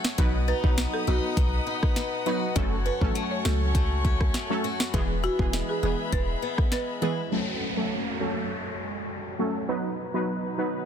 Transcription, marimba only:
0, 0, Header, 1, 2, 480
1, 0, Start_track
1, 0, Tempo, 594059
1, 149, Time_signature, 4, 2, 24, 8
1, 8769, End_track
2, 0, Start_track
2, 0, Title_t, "Marimba"
2, 0, Program_c, 0, 12
2, 390, Note_on_c, 0, 71, 84
2, 504, Note_off_c, 0, 71, 0
2, 756, Note_on_c, 0, 69, 84
2, 858, Note_off_c, 0, 69, 0
2, 871, Note_on_c, 0, 66, 82
2, 984, Note_off_c, 0, 66, 0
2, 2309, Note_on_c, 0, 71, 78
2, 2423, Note_off_c, 0, 71, 0
2, 2676, Note_on_c, 0, 73, 77
2, 2777, Note_off_c, 0, 73, 0
2, 2791, Note_on_c, 0, 69, 85
2, 2904, Note_off_c, 0, 69, 0
2, 4231, Note_on_c, 0, 66, 90
2, 4344, Note_off_c, 0, 66, 0
2, 4599, Note_on_c, 0, 68, 80
2, 4699, Note_off_c, 0, 68, 0
2, 4711, Note_on_c, 0, 68, 81
2, 4824, Note_off_c, 0, 68, 0
2, 4953, Note_on_c, 0, 71, 108
2, 5296, Note_off_c, 0, 71, 0
2, 5431, Note_on_c, 0, 71, 79
2, 5544, Note_off_c, 0, 71, 0
2, 5672, Note_on_c, 0, 71, 77
2, 5785, Note_off_c, 0, 71, 0
2, 8769, End_track
0, 0, End_of_file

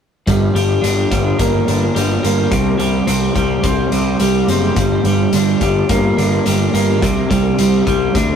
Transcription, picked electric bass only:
0, 0, Header, 1, 2, 480
1, 0, Start_track
1, 0, Key_signature, -2, "minor"
1, 0, Tempo, 562324
1, 233, Time_signature, 4, 2, 24, 8
1, 7134, End_track
2, 0, Start_track
2, 0, Title_t, "Picked electric bass"
2, 0, Program_c, 0, 34
2, 234, Note_on_c, 0, 31, 78
2, 412, Note_off_c, 0, 31, 0
2, 468, Note_on_c, 0, 31, 77
2, 648, Note_off_c, 0, 31, 0
2, 708, Note_on_c, 0, 31, 77
2, 888, Note_off_c, 0, 31, 0
2, 948, Note_on_c, 0, 31, 82
2, 1128, Note_off_c, 0, 31, 0
2, 1187, Note_on_c, 0, 31, 81
2, 1367, Note_off_c, 0, 31, 0
2, 1430, Note_on_c, 0, 31, 70
2, 1609, Note_off_c, 0, 31, 0
2, 1670, Note_on_c, 0, 31, 72
2, 1849, Note_off_c, 0, 31, 0
2, 1912, Note_on_c, 0, 31, 81
2, 2090, Note_off_c, 0, 31, 0
2, 2142, Note_on_c, 0, 36, 79
2, 2324, Note_off_c, 0, 36, 0
2, 2381, Note_on_c, 0, 36, 75
2, 2563, Note_off_c, 0, 36, 0
2, 2623, Note_on_c, 0, 36, 79
2, 2804, Note_off_c, 0, 36, 0
2, 2863, Note_on_c, 0, 36, 82
2, 3044, Note_off_c, 0, 36, 0
2, 3102, Note_on_c, 0, 36, 86
2, 3283, Note_off_c, 0, 36, 0
2, 3342, Note_on_c, 0, 36, 73
2, 3523, Note_off_c, 0, 36, 0
2, 3581, Note_on_c, 0, 36, 73
2, 3763, Note_off_c, 0, 36, 0
2, 3824, Note_on_c, 0, 30, 78
2, 4005, Note_off_c, 0, 30, 0
2, 4066, Note_on_c, 0, 31, 83
2, 4246, Note_off_c, 0, 31, 0
2, 4297, Note_on_c, 0, 31, 76
2, 4481, Note_off_c, 0, 31, 0
2, 4547, Note_on_c, 0, 31, 84
2, 4727, Note_off_c, 0, 31, 0
2, 4792, Note_on_c, 0, 31, 80
2, 4970, Note_off_c, 0, 31, 0
2, 5033, Note_on_c, 0, 31, 88
2, 5211, Note_off_c, 0, 31, 0
2, 5270, Note_on_c, 0, 31, 79
2, 5449, Note_off_c, 0, 31, 0
2, 5519, Note_on_c, 0, 31, 76
2, 5695, Note_off_c, 0, 31, 0
2, 5752, Note_on_c, 0, 31, 81
2, 5996, Note_off_c, 0, 31, 0
2, 5996, Note_on_c, 0, 36, 85
2, 6174, Note_off_c, 0, 36, 0
2, 6237, Note_on_c, 0, 36, 80
2, 6415, Note_off_c, 0, 36, 0
2, 6475, Note_on_c, 0, 36, 82
2, 6654, Note_off_c, 0, 36, 0
2, 6719, Note_on_c, 0, 36, 85
2, 6896, Note_off_c, 0, 36, 0
2, 6953, Note_on_c, 0, 38, 91
2, 7133, Note_off_c, 0, 38, 0
2, 7134, End_track
0, 0, End_of_file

